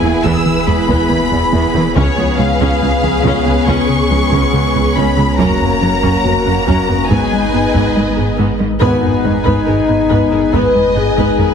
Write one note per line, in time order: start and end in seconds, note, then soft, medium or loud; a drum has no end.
0.00 1.98 E1 medium
0.00 0.10 E2 soft
0.00 0.16 E2 medium
0.00 1.79 B3 medium
0.00 1.92 B3 medium
0.00 1.79 E4 medium
0.00 1.96 E4 medium
0.00 0.16 E4 medium
0.00 1.92 G#4 medium
0.00 1.92 B4 medium
0.00 1.93 B4 medium
0.00 0.24 G#5 medium
0.04 0.12 A#3 soft
0.24 0.32 E2 medium
0.24 0.37 E2 medium
0.24 0.37 E3 medium
0.24 0.45 B3 medium
0.24 0.67 E6 medium
0.24 taiko medium
0.46 0.59 E3 medium
0.67 0.75 E2 soft
0.67 0.80 E2 medium
0.67 0.80 G#3 medium
0.67 0.77 B3 medium
0.67 1.96 B5 medium
0.88 0.96 E2 medium
0.88 1.01 E2 medium
0.88 1.02 E3 medium
0.88 1.09 B3 medium
0.88 taiko medium
1.09 1.18 E2 soft
1.09 1.22 E3 medium
1.09 1.20 A#3 soft
1.09 1.23 B3 medium
1.31 1.44 E2 medium
1.31 1.40 E2 medium
1.31 1.41 B3 medium
1.31 1.44 E4 medium
1.52 1.66 E2 medium
1.52 1.61 E2 medium
1.52 1.66 E3 medium
1.52 1.73 B3 medium
1.74 1.82 E2 medium
1.74 1.88 E3 medium
1.74 1.83 A#3 soft
1.74 1.87 B3 medium
1.95 2.04 C#2 medium
1.95 5.40 C#2 medium
1.95 2.10 C#2 medium
1.95 2.09 C#3 medium
1.95 5.35 B3 medium
1.95 2.16 C#4 medium
1.95 7.10 C#4 medium
1.95 7.07 C#4 medium
1.95 5.39 G#4 medium
1.95 5.35 G#4 medium
1.95 5.35 B4 medium
1.95 7.10 C#5 medium
1.95 2.38 C#5 medium
1.95 taiko medium
2.17 2.25 C#2 medium
2.17 2.31 C#2 medium
2.17 2.31 F3 medium
2.17 2.26 B3 soft
2.38 2.46 C#2 medium
2.38 2.52 C#3 medium
2.38 2.52 G#3 medium
2.38 2.48 C#4 soft
2.38 3.67 F5 medium
2.60 2.68 C#2 medium
2.60 2.73 C#2 medium
2.60 2.73 C#3 medium
2.60 2.81 C#4 medium
2.60 taiko medium
2.82 2.90 C#2 soft
2.82 2.95 C#2 medium
2.82 2.95 B3 medium
2.82 2.91 B3 soft
3.03 3.11 C#2 soft
3.03 3.16 C#2 medium
3.03 3.16 F3 medium
3.03 3.11 C#4 soft
3.23 3.31 C#2 medium
3.23 3.38 C#2 medium
3.23 3.37 C#3 medium
3.23 3.45 C#4 medium
3.23 taiko medium
3.45 3.53 C#2 soft
3.45 3.60 C#2 medium
3.45 3.58 B3 medium
3.45 3.56 B3 medium
3.66 3.75 C#2 medium
3.66 3.81 C#2 medium
3.66 3.80 C#3 medium
3.66 3.88 C#4 medium
3.66 4.95 C#6 medium
3.66 taiko medium
3.89 4.02 C#3 medium
4.10 4.18 C#2 soft
4.10 4.24 C#2 medium
4.10 4.23 F3 medium
4.10 4.19 C#4 medium
4.31 4.39 C#2 medium
4.31 4.45 C#2 medium
4.31 4.44 C#3 medium
4.31 4.52 C#4 medium
4.31 taiko medium
4.52 4.60 C#2 soft
4.52 4.66 C#3 medium
4.52 4.66 G#3 medium
4.52 4.62 B3 soft
4.74 4.82 C#2 soft
4.74 4.88 C#2 soft
4.74 4.87 B3 soft
4.74 4.84 C#4 soft
4.96 5.04 C#2 medium
4.96 5.09 C#2 medium
4.96 5.09 C#3 medium
4.96 5.16 C#4 medium
4.96 5.39 B5 medium
5.17 5.25 C#2 soft
5.17 5.31 C#3 medium
5.17 5.30 G#3 medium
5.17 5.26 B3 soft
5.38 7.12 F#1 medium
5.38 5.47 F#2 medium
5.38 5.52 F#2 medium
5.38 5.52 F#3 medium
5.38 7.10 A#3 medium
5.38 7.07 A#3 medium
5.38 5.59 C#4 medium
5.38 7.10 F#4 medium
5.38 7.07 F#4 soft
5.38 7.07 A#4 medium
5.38 7.07 A#5 loud
5.38 taiko medium
5.60 5.68 F#2 soft
5.60 5.73 F#2 soft
5.60 5.73 A#3 medium
5.60 5.68 B3 soft
5.81 5.90 F#2 soft
5.81 5.95 F#3 medium
5.81 5.89 C#4 soft
5.81 5.94 C#4 medium
6.02 6.11 F#2 medium
6.02 6.16 F#2 medium
6.02 6.16 F#3 medium
6.02 6.23 C#4 medium
6.02 taiko medium
6.23 6.33 F#2 soft
6.23 6.38 F#2 medium
6.23 6.31 B3 soft
6.23 6.37 F#4 medium
6.45 6.54 F#2 soft
6.45 6.60 F#2 soft
6.45 6.59 A#3 medium
6.45 6.53 C#4 soft
6.66 6.75 F#2 medium
6.66 6.80 F#2 medium
6.66 6.80 F#3 medium
6.66 6.87 C#4 medium
6.66 taiko medium
6.88 6.97 F#2 soft
6.88 7.02 F#2 medium
6.88 6.96 B3 soft
6.88 7.02 F#4 soft
7.09 8.81 G#1 medium
7.09 7.18 G#2 medium
7.09 7.23 G#2 medium
7.09 7.23 G#3 medium
7.09 8.78 B3 medium
7.09 7.30 B3 medium
7.09 8.50 B3 soft
7.09 8.79 D#4 medium
7.09 8.62 D#4 soft
7.09 8.50 D#4 soft
7.09 8.79 G#4 medium
7.09 8.79 B4 medium
7.09 8.62 B4 medium
7.09 8.62 D#5 soft
7.09 8.39 G#5 medium
7.09 taiko medium
7.33 7.46 G#3 medium
7.52 7.61 G#2 soft
7.52 7.67 G#2 medium
7.52 7.60 B3 soft
7.52 7.66 B3 medium
7.73 7.83 G#2 medium
7.73 7.88 G#2 medium
7.73 7.87 G#3 medium
7.73 7.94 B3 soft
7.73 taiko medium
7.95 8.04 G#2 soft
7.95 8.09 G#3 medium
7.95 8.03 A#3 soft
7.95 8.09 D#4 soft
8.16 8.25 G#2 soft
8.16 8.30 G#2 soft
8.16 8.24 B3 soft
8.16 8.30 G#4 soft
8.37 8.47 G#2 medium
8.37 8.52 G#2 medium
8.37 8.51 G#3 medium
8.37 8.58 B3 medium
8.58 8.68 G#2 soft
8.58 8.73 G#3 medium
8.58 8.66 A#3 soft
8.58 8.73 D#4 soft
8.79 9.02 G#1 medium
8.79 11.54 G#1 medium
8.79 9.02 G#2 medium
8.79 8.95 G#2 loud
8.79 8.94 G#3 medium
8.79 9.00 B3 medium
8.79 11.54 B3 medium
8.79 9.22 B3 medium
8.79 11.54 D#4 medium
8.79 11.54 G#4 medium
8.79 9.00 B4 medium
8.79 11.54 B4 medium
8.79 11.54 G#5 medium
8.79 taiko medium
9.01 9.11 G#2 soft
9.01 9.16 G#2 medium
9.01 9.09 B3 soft
9.01 9.16 B3 medium
9.01 9.09 A#4 soft
9.01 taiko low soft
9.23 9.32 G#1 soft
9.23 9.32 G#2 soft
9.23 9.38 G#3 medium
9.23 9.31 B3 soft
9.23 9.37 D#4 medium
9.23 10.54 D#4 medium
9.23 9.31 B4 soft
9.23 taiko low soft
9.44 9.54 G#2 medium
9.44 9.59 G#2 medium
9.44 9.59 G#3 medium
9.44 9.65 B3 medium
9.44 9.65 B4 medium
9.44 taiko medium
9.66 9.75 G#1 soft
9.66 9.75 G#2 soft
9.66 9.81 G#2 medium
9.66 9.74 B3 soft
9.66 9.80 G#4 medium
9.66 9.74 A#4 soft
9.88 9.97 G#2 soft
9.88 10.02 G#2 medium
9.88 9.96 B3 soft
9.88 10.02 B3 medium
9.88 9.96 B4 soft
10.09 10.18 G#1 medium
10.09 10.18 G#2 medium
10.09 10.23 G#2 medium
10.09 10.23 G#3 medium
10.09 10.30 B3 medium
10.09 10.30 B4 medium
10.09 taiko medium
10.31 10.40 G#2 soft
10.31 10.45 G#2 medium
10.31 10.40 B3 soft
10.31 10.45 G#4 medium
10.31 10.39 A#4 soft
10.53 10.61 G#1 medium
10.53 10.61 G#2 medium
10.53 10.67 G#2 medium
10.53 10.66 G#3 medium
10.53 10.73 B3 medium
10.53 10.73 B4 medium
10.53 10.96 B4 medium
10.53 11.35 D#5 medium
10.53 taiko medium
10.75 10.88 G#3 medium
10.75 taiko low soft
10.95 11.04 G#1 soft
10.95 11.03 G#2 soft
10.95 11.09 G#2 medium
10.95 11.04 B3 medium
10.95 11.09 B3 medium
10.95 11.54 G#4 medium
10.95 11.04 B4 soft
11.17 11.26 G#2 medium
11.17 11.30 G#2 medium
11.17 11.30 G#3 medium
11.17 11.38 B3 medium
11.17 11.37 B4 medium
11.17 taiko medium
11.39 11.47 G#1 soft
11.39 11.47 G#2 soft
11.39 11.52 G#3 medium
11.39 11.47 B3 medium
11.39 11.52 D#4 medium
11.39 11.47 A#4 medium
11.39 11.54 B4 medium
11.39 taiko low medium